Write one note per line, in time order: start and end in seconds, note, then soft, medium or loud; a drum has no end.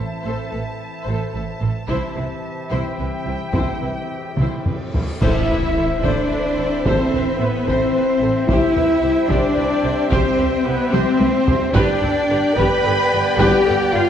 0.00 1.86 E3 soft
0.00 1.86 C4 soft
0.00 1.84 E4 soft
0.00 1.84 A4 soft
0.00 1.84 C5 soft
0.00 1.84 E5 soft
0.00 2.68 A5 soft
0.24 0.33 A1 medium
0.24 0.34 A2 medium
0.24 0.51 A4 medium
0.24 0.50 C5 soft
0.51 0.61 A1 soft
0.51 0.60 A2 soft
0.51 0.60 A4 soft
0.51 0.59 B4 soft
1.04 1.14 A1 medium
1.04 1.14 A2 medium
1.04 1.33 A4 medium
1.04 1.31 C5 medium
1.33 1.42 A1 soft
1.33 1.43 A2 soft
1.33 1.42 A4 soft
1.33 1.41 B4 soft
1.60 1.69 A1 soft
1.60 1.70 A2 soft
1.60 1.71 A4 medium
1.60 1.68 C5 soft
1.88 1.98 C2 medium
1.88 1.97 C3 medium
1.88 4.90 E3 medium
1.88 4.90 C4 medium
1.88 2.14 E4 medium
1.88 4.91 E4 medium
1.88 4.95 G4 medium
1.88 2.14 C5 medium
1.88 4.91 C5 medium
1.88 4.91 E5 medium
1.88 taiko soft
2.15 2.25 C2 soft
2.15 2.24 C3 medium
2.15 2.24 E4 soft
2.15 2.23 B4 soft
2.70 2.79 C2 medium
2.70 2.79 C3 medium
2.70 2.96 E4 medium
2.70 2.97 C5 medium
2.70 5.01 G5 medium
2.97 3.07 C2 soft
2.97 3.06 C3 soft
2.97 3.05 E4 soft
2.97 3.07 B4 soft
3.26 3.35 C2 soft
3.26 3.35 C3 soft
3.26 3.34 E4 soft
3.26 3.35 C5 soft
3.53 3.63 C2 medium
3.53 3.62 C3 medium
3.53 3.80 E4 medium
3.53 3.80 C5 medium
3.53 taiko medium
3.53 reverse cymbal soft
3.82 3.91 C2 soft
3.82 3.90 C3 soft
3.82 3.90 E4 soft
3.82 3.91 B4 soft
4.37 4.46 C2 soft
4.37 4.46 C3 soft
4.37 4.65 E4 soft
4.37 4.64 C5 medium
4.37 taiko mid medium
4.66 4.74 C2 soft
4.66 4.74 C3 soft
4.66 4.74 E4 soft
4.66 4.74 B4 soft
4.66 taiko low-mid medium
4.93 5.03 C2 soft
4.93 5.01 C3 soft
4.93 5.02 E4 soft
4.93 5.02 C5 soft
4.93 taiko low medium
5.20 5.30 A1 medium
5.20 6.00 A2 medium
5.20 8.46 E3 medium
5.20 8.45 C4 medium
5.20 8.44 E4 medium
5.20 6.00 E4 medium
5.20 8.45 A4 medium
5.20 5.47 A4 medium
5.20 8.45 C5 medium
5.20 5.47 C5 medium
5.20 8.45 E5 medium
5.20 6.00 E5 medium
5.20 8.46 E5 medium
5.20 concert bass drum medium
5.20 taiko medium
5.20 crash medium
5.20 impact medium
5.49 5.57 A1 soft
5.49 5.57 A4 soft
5.49 5.58 B4 soft
5.49 taiko low soft
5.76 5.84 A1 medium
5.76 5.85 A4 medium
5.76 5.85 C5 medium
6.03 6.11 A1 medium
6.03 6.86 D4 medium
6.03 6.87 D4 medium
6.03 6.29 A4 medium
6.03 6.29 C5 medium
6.03 6.85 D5 medium
6.03 6.84 D5 medium
6.03 taiko medium
6.30 6.38 A1 medium
6.30 6.39 A4 medium
6.30 6.39 B4 medium
6.57 6.65 A1 medium
6.57 6.66 A4 medium
6.57 6.66 C5 medium
6.85 6.93 A1 medium
6.85 7.39 C4 medium
6.85 7.41 C4 medium
6.85 7.11 A4 medium
6.85 7.40 C5 medium
6.85 7.11 C5 medium
6.85 7.40 C5 medium
6.85 taiko loud
7.12 7.20 A1 soft
7.12 7.22 A4 soft
7.12 7.22 B4 medium
7.12 taiko low soft
7.38 7.47 A1 medium
7.38 7.67 B3 medium
7.38 7.48 A4 medium
7.38 7.66 B4 medium
7.38 7.68 B4 medium
7.38 7.48 C5 medium
7.65 7.74 A1 medium
7.65 8.48 C4 loud
7.65 8.49 C4 medium
7.65 7.93 A4 medium
7.65 8.49 C5 medium
7.65 7.93 C5 medium
7.65 taiko medium
7.92 8.00 A1 soft
7.92 8.03 A4 medium
7.92 8.04 B4 medium
8.20 8.28 A1 medium
8.20 8.30 A4 medium
8.20 8.31 C5 medium
8.47 8.55 C2 medium
8.47 11.58 G3 medium
8.47 11.58 C4 medium
8.47 11.75 C4 medium
8.47 9.28 E4 medium
8.47 9.30 E4 medium
8.47 11.73 G4 medium
8.47 8.74 G4 medium
8.47 11.71 C5 medium
8.47 8.75 C5 medium
8.47 9.29 E5 medium
8.47 11.71 E5 medium
8.47 11.73 G5 medium
8.47 taiko loud
8.75 8.83 C2 soft
8.75 8.84 G4 medium
8.75 8.84 B4 medium
8.75 taiko low soft
9.02 9.10 C2 medium
9.02 9.11 G4 medium
9.02 9.10 C5 medium
9.29 9.37 C2 medium
9.29 10.11 D4 loud
9.29 10.12 D4 medium
9.29 9.55 G4 medium
9.29 9.56 C5 medium
9.29 10.12 D5 medium
9.29 taiko medium
9.56 9.64 C2 medium
9.56 9.64 G4 medium
9.56 9.65 B4 medium
9.83 9.91 C2 medium
9.83 9.91 G4 medium
9.83 9.92 C5 medium
10.10 10.19 C2 loud
10.10 10.65 C4 medium
10.10 10.66 C4 loud
10.10 10.37 G4 loud
10.10 10.65 C5 medium
10.10 10.37 C5 loud
10.10 10.65 C5 medium
10.10 taiko medium
10.38 10.47 C2 soft
10.38 10.46 G4 medium
10.38 10.46 B4 medium
10.38 taiko low soft
10.63 10.74 C2 medium
10.63 10.93 B3 loud
10.63 10.72 G4 medium
10.63 10.93 B4 medium
10.63 10.71 C5 medium
10.91 11.01 C2 medium
10.91 11.72 C4 loud
10.91 11.75 C4 loud
10.91 11.17 G4 medium
10.91 11.18 C5 medium
10.91 11.75 C5 medium
10.91 taiko high medium
11.18 11.28 C2 medium
11.18 11.26 G4 medium
11.18 11.26 B4 medium
11.18 taiko high loud
11.46 11.55 C2 medium
11.46 11.54 G4 medium
11.46 11.54 C5 medium
11.46 taiko low medium
11.73 11.83 G1 loud
11.73 14.10 G3 loud
11.73 14.10 B3 medium
11.73 12.56 D4 loud
11.73 12.58 D4 loud
11.73 14.10 D4 medium
11.73 12.00 G4 loud
11.73 14.10 G4 medium
11.73 12.00 B4 loud
11.73 14.10 B4 loud
11.73 12.58 D5 medium
11.73 14.10 D5 loud
11.73 12.57 D5 loud
11.73 14.10 G5 loud
11.73 taiko loud
12.02 12.10 G1 medium
12.02 12.11 G4 medium
12.02 12.10 A4 medium
12.02 taiko low medium
12.30 12.38 G1 medium
12.30 12.38 G4 medium
12.30 12.38 B4 medium
12.55 12.65 G1 loud
12.55 12.83 G4 medium
12.55 13.22 B4 loud
12.55 12.83 B4 medium
12.55 13.38 B4 loud
12.55 13.39 B5 loud
12.59 taiko medium
12.84 12.93 G1 medium
12.84 12.92 G4 medium
12.84 12.93 A4 medium
13.12 13.20 G1 medium
13.12 13.21 G4 medium
13.12 13.20 B4 medium
13.38 13.47 G1 loud
13.38 13.64 G4 loud
13.38 13.93 G4 loud
13.38 13.94 G4 loud
13.38 13.64 B4 loud
13.38 13.78 G5 medium
13.38 13.93 G5 loud
13.38 taiko loud
13.66 13.75 G1 medium
13.66 13.74 G4 medium
13.66 13.74 A4 medium
13.66 taiko low soft
13.93 14.02 G1 medium
13.93 14.10 F4 loud
13.93 14.01 G4 medium
13.93 14.01 B4 medium
13.93 14.10 F5 loud
13.93 14.10 F5 medium